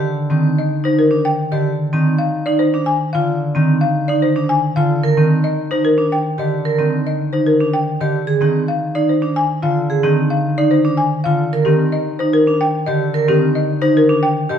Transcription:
X:1
M:3/4
L:1/16
Q:1/4=111
K:Fdor
V:1 name="Marimba"
z4 e z c B z g z e | z4 f z d c z a z f | z4 f z d c z a z f | z4 e z c B z g z e |
z4 e z c B z g z e | z2 A z f z d c z a z f | z2 A z f z d c z a z f | z2 G z e z c B z g z e |
z2 G z e z c B z g z e |]
V:2 name="Vibraphone"
z2 C z3 E z D z2 G | z2 C z3 E z D z2 F | z2 C z3 E z D z2 F | z B C z3 E z D z2 G |
z B C z3 E z D z2 G | z A C z3 E z D z2 F | z A C z3 E z D z2 F | z B C z3 E z D z2 G |
z B C z3 E z D z2 G |]
V:3 name="Harp" clef=bass
[D,E,]2 E,8- E, D, | z2 E,8- E, D,- | D,2 E,8- E, D, | z2 E,8- E, D,- |
D,2 E,8- E, D, | z2 E,8- E, D,- | D,2 E,8- E, D, | z2 E,8- E, D,- |
D,2 E,8- E, D, |]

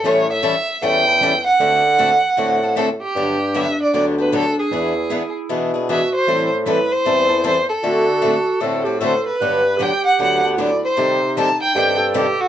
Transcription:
X:1
M:4/4
L:1/8
Q:"Swing" 1/4=154
K:G
V:1 name="Violin"
^c e3 g3 f- | f6 A G- | G2 e d d B A _A- | _A3 z3 e c- |
c z B c3 c A- | A4- A z c B- | B2 g f f z d c- | c2 a g g z G F |]
V:2 name="Clarinet"
z8 | z8 | D8 | E6 F2 |
E6- E z | F4 A G A2 | B2 G4 E2 | _E4 G A3 |]
V:3 name="Steel-string acoustic guitar"
[E,G,^CEA] z [E,G,CEA] z [E,G,CEA] [CEA] [E,G,CEA] z | [D,A,CFA] z [D,A,CFA] z [D,A,CFA] [CFA] [D,A,CFA] z | [D,F,B,DG] z [D,F,B,DG] z [D,F,B,DG] [B,DG] [D,F,B,DG] z | [E,B,D^G] z [E,B,DG] z [E,B,DG] [B,DG] [E,B,DG] z |
[E,G,CEA] z [E,G,CEA] z [E,G,CEA] [CEA] [E,G,CEA] z | [D,A,CFA] z [D,A,CFA] z [D,A,CFA] [CFA] [D,A,CFA] z | [D,F,B,DG] z [D,F,B,DG] z [D,F,B,DG] [B,DG] [D,F,B,DG] z | [C,_E,G,CGA] z [C,E,G,CGA] z [C,E,G,CGA] [G,CGA] [C,E,G,CGA] z |]
V:4 name="Steel-string acoustic guitar"
[E,G,^CEA] z [E,G,CEA] z [E,G,CEA] z [E,G,CEA] z | [D,A,CFA] z [D,A,CFA] z [D,A,CFA] z [D,A,CFA] z | [D,F,B,DG] z [D,F,B,DG] z [D,F,B,DG] z [D,F,B,DG] z | [E,B,D^GB] z [E,B,DGB] z [E,B,DGB] z [E,B,DGB] z |
[E,G,CEA] z [E,G,CEA] z [E,G,CEA] z [E,G,CEA] z | [D,A,CFA] z [D,A,CFA] z [D,A,CFA] z [D,A,CFA] z | [D,F,B,DG] z [D,F,B,DG] z [D,F,B,DG] z [D,F,B,DG] z | [C,_E,G,CGA] z [C,E,G,CGA] z [C,E,G,CGA] z [C,E,G,CGA] z |]
V:5 name="Bassoon" clef=bass
A,,3 z E,,4 | D,4 A,,4 | G,,4 D,,4 | E,,3 z B,,4 |
A,,4 E,,4 | D,4 A,,4 | G,,3 z D,,4 | C,4 G,,4 |]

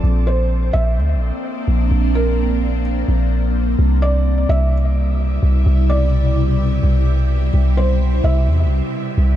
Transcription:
X:1
M:4/4
L:1/16
Q:1/4=128
K:C
V:1 name="Felt piano"
z2 c4 e2 z8 | z2 _B6 z8 | z2 d4 e2 z8 | z2 d12- d2 |
z2 c4 e2 z8 |]
V:2 name="Ambient pad"
[_B,CD]16- | [_B,CD]16 | [B,,C,G,E]16- | [B,,C,G,E]16- |
[B,,C,G,E]16 |]
V:3 name="808-style bass" clef=bass
_B,,,6 B,,,2 D,,3/2 B,,,3/2 z3 B,,,2 | _B,,,8- B,,,2 B,,,6 | C,,6 C,,8 C,,2 | C,,8- C,,2 C,,6 |
C,,6 C,,2 E,,3/2 C,,3/2 z3 C,,2 |]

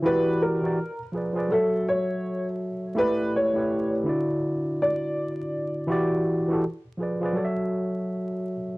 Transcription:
X:1
M:4/4
L:1/16
Q:"Swing 16ths" 1/4=82
K:F#phr
V:1 name="Upright piano"
B2 ^A3 z3 =A2 c3 z3 | B2 c3 z4 z d6 | z16 |]
V:2 name="Tine electric piano"
[E,EFGd]2 z [E,EFGd] z2 [=F,=F_A_cd] [F,FAcd] [^F,^F=A^ce]6 z2 | [A,EGBd]2 z [A,EGBc]2 z [D,DEFd]6 z4 | [E,EFGd]2 z [E,EFGA] z2 [=F,=F_A_cd] [F,FAcd] [^F,^F=A^cde]6 z2 |]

